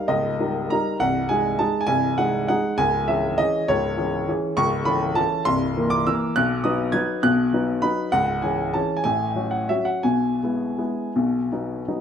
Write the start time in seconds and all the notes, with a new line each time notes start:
0.08 C#1 C#2 D#5
0.40 G3 D#4 A#4
0.70 G3 D#4 A#4 A#5
1.00 C1 C2 F#5
1.29 G#3 D#4 G#4 G#5
1.59 G#3 D#4 G#4 A5
1.81 G#5
1.87 C1 C2 G#5
2.18 G#3 D#4 G#4 F#5
2.48 G#3 D#4 G#4 F#5
2.78 C#1 C#2 G#5
3.08 E3 C#4 G#4 E5
3.38 E3 C#4 G#4 D#5
3.68 C#1 C#2 C#5
3.97 E3 C#4 G#4
4.29 E3 C#4 G#4
4.57 C#1 C#2 C#6
4.85 E3 C#4 A4 B5
5.15 E3 C#4 A4 A5
5.45 C1 C2 C6
5.77 E3 A#3 A#4
5.90 D6
6.07 E3 A#3 A#4 E6
6.36 B1 B2 F#6
6.64 F#3 D#4 B4 D#6
6.92 F#3 D#4 B4 G#6
7.23 B1 B2 F#6
7.53 F#3 D#4 B4
7.82 F#3 D#4 B4 B5
8.12 C#1 C#2 F#5
8.42 E3 C#4 G#4 G#5
8.74 E3 C#4 G#4 A5
8.97 G#5
9.04 A1 A2 G#5
9.35 F#3 C#4 F#4
9.51 F#5
9.69 F#3 C#4 F#4 E5
9.85 F#5
10.03 B1 B2 G#5
10.43 G#3 B3 E4
10.78 G#3 B3 E4
11.16 B1 B2
11.52 F#3 B3 D#4
11.88 F#3 B3 D#4